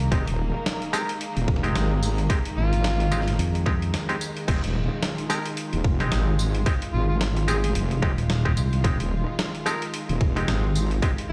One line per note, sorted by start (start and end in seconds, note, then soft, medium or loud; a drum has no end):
0.00 11.32 D#3 medium
0.00 11.32 G#3 medium
0.00 4.47 A#3 medium
0.00 closed hi-hat soft
0.11 0.25 F1 loud
0.11 0.26 G#3 medium
0.11 0.26 C4 medium
0.11 0.26 D#4 medium
0.11 0.26 G4 loud
0.11 kick loud
0.11 closed hi-hat medium
0.27 0.52 D#1 loud
0.27 closed hi-hat medium
0.66 snare loud
0.66 closed hi-hat medium
0.82 closed hi-hat soft
0.93 1.02 G#3 loud
0.93 1.02 C4 medium
0.93 1.02 D#4 medium
0.93 1.02 G4 loud
0.93 1.08 A#4 loud
0.93 snare soft
0.93 tambourine medium
1.09 closed hi-hat medium
1.21 closed hi-hat medium
1.36 1.46 D#1 loud
1.36 closed hi-hat soft
1.48 1.73 F1 loud
1.48 kick loud
1.56 snare medium
1.63 2.27 G#3 medium
1.63 2.27 C4 medium
1.63 2.27 D#4 medium
1.63 2.27 G4 loud
1.63 closed hi-hat soft
1.75 2.28 G#1 loud
1.75 snare loud
1.75 closed hi-hat medium
2.03 tambourine medium
2.18 closed hi-hat soft
2.30 2.39 G#3 medium
2.30 2.39 C4 medium
2.30 2.39 D#4 medium
2.30 2.39 G4 loud
2.30 kick loud
2.30 closed hi-hat medium
2.45 closed hi-hat medium
2.57 3.37 G#1 loud
2.57 3.34 F4 loud
2.73 closed hi-hat soft
2.84 snare loud
2.84 closed hi-hat medium
3.00 closed hi-hat soft
3.12 3.21 G#3 medium
3.12 3.20 C4 medium
3.12 3.21 D#4 medium
3.12 3.20 G4 loud
3.12 tambourine medium
3.21 snare soft
3.28 snare soft
3.28 closed hi-hat medium
3.39 3.94 F2 loud
3.39 closed hi-hat medium
3.55 closed hi-hat soft
3.66 3.75 G#3 loud
3.66 3.75 C4 medium
3.66 3.75 D#4 medium
3.66 3.75 G4 loud
3.66 kick loud
3.66 snare medium
3.82 closed hi-hat soft
3.94 snare loud
3.94 closed hi-hat medium
4.09 4.16 G#3 medium
4.09 4.16 C4 medium
4.09 4.16 D#4 medium
4.09 4.16 G4 loud
4.09 closed hi-hat soft
4.21 tambourine medium
4.37 closed hi-hat soft
4.48 4.61 F1 loud
4.48 4.62 G#3 medium
4.48 4.62 C4 medium
4.48 4.62 D#4 medium
4.48 11.32 F4 medium
4.48 4.62 G4 medium
4.48 kick loud
4.48 closed hi-hat medium
4.48 crash medium
4.64 4.89 D#1 loud
4.64 closed hi-hat medium
5.03 snare loud
5.03 closed hi-hat medium
5.18 closed hi-hat soft
5.30 5.39 G#3 loud
5.30 5.39 C4 medium
5.30 5.39 D#4 medium
5.30 5.39 G4 loud
5.30 5.45 A#4 medium
5.30 snare soft
5.30 tambourine medium
5.46 closed hi-hat medium
5.57 closed hi-hat medium
5.73 5.83 D#1 loud
5.73 closed hi-hat soft
5.84 6.10 F1 loud
5.84 kick loud
6.00 6.64 G#3 medium
6.00 6.64 C4 medium
6.00 6.64 D#4 medium
6.00 6.64 G4 loud
6.00 snare medium
6.00 closed hi-hat soft
6.12 6.65 G#1 loud
6.12 snare loud
6.12 closed hi-hat medium
6.39 tambourine medium
6.55 closed hi-hat soft
6.66 6.75 G#3 medium
6.66 6.75 C4 medium
6.66 6.75 D#4 medium
6.66 6.75 G4 loud
6.66 kick loud
6.66 closed hi-hat medium
6.82 closed hi-hat medium
6.94 7.74 G#1 loud
6.94 7.04 F4 medium
7.09 7.17 F4 medium
7.21 snare loud
7.21 closed hi-hat medium
7.37 closed hi-hat soft
7.48 7.57 G#3 medium
7.48 7.57 C4 medium
7.48 7.57 D#4 medium
7.48 7.57 G4 loud
7.48 7.58 G#4 medium
7.48 tambourine medium
7.64 7.71 G#4 medium
7.64 closed hi-hat medium
7.75 8.01 F1 loud
7.75 closed hi-hat medium
7.91 closed hi-hat soft
8.02 8.16 F1 loud
8.02 8.11 G#3 loud
8.02 8.11 C4 medium
8.02 8.11 D#4 medium
8.02 8.11 G4 loud
8.02 kick loud
8.02 snare medium
8.18 8.55 D#1 loud
8.18 closed hi-hat soft
8.30 snare loud
8.30 closed hi-hat medium
8.45 8.52 G#3 medium
8.45 8.52 C4 medium
8.45 8.52 D#4 medium
8.45 8.52 G4 loud
8.45 kick medium
8.57 8.83 C2 loud
8.57 tambourine medium
8.73 closed hi-hat soft
8.84 8.98 F1 loud
8.84 8.98 G#3 medium
8.84 8.98 C4 medium
8.84 8.98 D#4 medium
8.84 8.98 G4 medium
8.84 kick loud
8.84 closed hi-hat medium
9.00 9.25 D#1 loud
9.00 closed hi-hat medium
9.39 snare loud
9.39 closed hi-hat medium
9.55 closed hi-hat soft
9.66 9.75 G#3 loud
9.66 9.75 C4 medium
9.66 9.75 D#4 medium
9.66 9.75 G4 loud
9.66 9.81 A#4 medium
9.66 snare soft
9.66 tambourine medium
9.82 closed hi-hat medium
9.94 closed hi-hat medium
10.09 10.19 D#1 loud
10.09 closed hi-hat soft
10.21 10.46 F1 loud
10.21 kick loud
10.36 11.00 G#3 medium
10.36 11.00 C4 medium
10.36 11.00 D#4 medium
10.36 11.00 G4 loud
10.36 snare medium
10.36 closed hi-hat soft
10.48 11.01 G#1 medium
10.48 snare loud
10.48 closed hi-hat medium
10.75 tambourine medium
10.91 closed hi-hat soft
11.02 11.11 G#3 medium
11.02 11.11 C4 medium
11.02 11.11 D#4 medium
11.02 11.11 G4 loud
11.02 kick loud
11.02 closed hi-hat medium
11.18 closed hi-hat medium